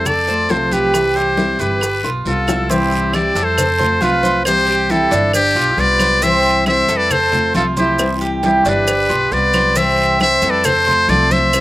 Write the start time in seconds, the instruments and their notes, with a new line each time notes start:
Already playing: upright bass F2, cuban tres A4
0.05 flute A4, muted trumpet D5, muted steel-string acoustic guitar stroke, high bongo, high conga, low conga, long guiro, claves, maracas
0.27 steel-string acoustic guitar A3 C4 F4, cuban tres C5, high bongo, high conga, maracas
0.49 upright bass C2, steel-string acoustic guitar C3 F3 A3 C4 F4, flute A4, muted trumpet C5, high bongo, low bongo, high conga, short guiro, maracas
0.71 cuban tres G4, flute G4, muted trumpet B4, high conga, short guiro, maracas
0.93 steel-string acoustic guitar C3 E3 G3 C4 E4, high bongo, long guiro, claves, maracas
1.16 cuban tres E4, flute G4, muted trumpet C5, high bongo, high conga, maracas
1.37 steel-string acoustic guitar C3 E3 G3 C4 E4, high bongo, high conga, short guiro, maracas
1.59 upright bass G1, steel-string acoustic guitar G3 C4 E4, flute G4, cuban tres B4, muted trumpet B4, high bongo, high conga, short guiro, maracas
1.81 muted steel-string acoustic guitar stroke, high bongo, high conga, long guiro, claves, maracas
2.03 upright bass B1, steel-string acoustic guitar B3 F4, cuban tres F4, high bongo, high conga, maracas
2.25 upright bass C2, steel-string acoustic guitar G3 B3 F4, flute F4, muted trumpet A4, low bongo, high conga, short guiro, maracas
2.47 cuban tres E4, low bongo, high conga, short guiro, claves, maracas
2.69 steel-string acoustic guitar C3 E3 G3 C4 E4, cuban tres C4, flute E4, muted trumpet G4, cowbell, high conga, long guiro, maracas
2.92 high conga, maracas
3.13 steel-string acoustic guitar C3 E3 G3 C4 E4, cuban tres E4, flute G4, muted trumpet D5, cowbell, high conga, short guiro, claves, maracas
3.35 upright bass F2, steel-string acoustic guitar G3 C4 E4, cuban tres A4, cowbell, high conga, short guiro, maracas
3.43 flute A4, muted trumpet C5
3.58 muted steel-string acoustic guitar stroke, cowbell, high conga, low conga, long guiro, claves, maracas
3.79 steel-string acoustic guitar A3 C4 F4, cuban tres C5, high conga, low conga, maracas
4.01 upright bass C2, steel-string acoustic guitar C3 F3 A3 C4 F4, cuban tres F4, flute F4, muted trumpet B4, cowbell, high conga, short guiro, maracas
4.23 cuban tres C5, high conga, short guiro, maracas
4.45 steel-string acoustic guitar C3 E3 G3 C4 E4, flute G4, muted trumpet C5, cowbell, long guiro, claves, maracas
4.67 cuban tres G4, high conga, maracas
4.89 steel-string acoustic guitar C3 E3 G3 C4 E4, flute E4, muted trumpet A4, cowbell, high conga, short guiro, maracas
5.11 upright bass G1, steel-string acoustic guitar G3 C4 E4, cuban tres D4, cowbell, short guiro, maracas
5.33 flute D4, muted trumpet G4, muted steel-string acoustic guitar stroke, cowbell, high conga, long guiro, claves, maracas
5.55 upright bass B1, steel-string acoustic guitar B3 F4, cuban tres F4, high conga, maracas
5.77 upright bass C2, steel-string acoustic guitar G3 B3 F4, flute B4, muted trumpet D5, cowbell, high conga, short guiro, maracas
5.99 cuban tres C5, cowbell, high conga, short guiro, claves, maracas
6.21 steel-string acoustic guitar C3 E3 G3 C4 E4, cuban tres C4, flute C5, muted trumpet E5, cowbell, long guiro, maracas
6.44 high conga, maracas
6.66 steel-string acoustic guitar C3 E3 G3 C4 E4, cuban tres E4, flute C5, muted trumpet E5, cowbell, high conga, short guiro, claves, maracas
6.88 upright bass F2, steel-string acoustic guitar G3 C4 E4, cuban tres A4, cowbell, high conga, short guiro, maracas
6.97 flute B4, muted trumpet D5
7.10 flute A4, muted trumpet C5, muted steel-string acoustic guitar stroke, cowbell, high conga, low conga, long guiro, claves, maracas
7.32 steel-string acoustic guitar A3 C4 F4, cuban tres C5, high conga, low conga, maracas
7.54 upright bass C2, steel-string acoustic guitar C3 F3 A3 C4 F4, cuban tres F4, flute F4, muted trumpet A4, cowbell, high conga, short guiro, maracas
7.77 flute E4, muted trumpet G4, cuban tres C5, high conga, short guiro, maracas
7.98 steel-string acoustic guitar C3 E3 G3 C4 E4, cowbell, high conga, long guiro, claves, maracas
8.21 cuban tres G4, high conga, maracas
8.42 steel-string acoustic guitar C3 E3 G3 C4 E4, flute E4, muted trumpet G4, cowbell, high conga, short guiro, maracas
8.65 upright bass G1, steel-string acoustic guitar G3 C4 E4, cuban tres D4, flute G4, muted trumpet B4, cowbell, high conga, short guiro, maracas
8.87 muted steel-string acoustic guitar stroke, cowbell, high conga, long guiro, claves, maracas
9.09 upright bass B1, steel-string acoustic guitar B3 F4, cuban tres F4, high conga, maracas
9.31 upright bass C2, steel-string acoustic guitar G3 B3 F4, flute B4, muted trumpet D5, cowbell, high conga, short guiro, maracas
9.53 cuban tres C5, cowbell, high conga, short guiro, claves, maracas
9.75 steel-string acoustic guitar C3 E3 G3 C4 E4, cuban tres C4, flute C5, muted trumpet E5, cowbell, high conga, long guiro, maracas
9.98 high conga, maracas
10.20 steel-string acoustic guitar C3 E3 G3 C4 E4, cuban tres E4, flute C5, muted trumpet E5, cowbell, high conga, short guiro, claves, maracas
10.42 upright bass F2, steel-string acoustic guitar G3 C4 E4, cuban tres A4, cowbell, high conga, short guiro, maracas
10.50 flute B4, muted trumpet D5
10.64 flute A4, muted trumpet C5, muted steel-string acoustic guitar stroke, cowbell, high conga, low conga, long guiro, claves, maracas
10.86 steel-string acoustic guitar A3 C4 F4, cuban tres C5, high conga, low conga, maracas
11.08 upright bass C2, steel-string acoustic guitar C3 F3 A3 C4 F4, cuban tres F4, flute A4, muted trumpet D5, cowbell, high conga, short guiro, maracas
11.31 flute C5, cuban tres C5, muted trumpet E5, high conga, short guiro, maracas
11.53 steel-string acoustic guitar C3 E3 G3 C4 E4, cowbell, long guiro, claves, maracas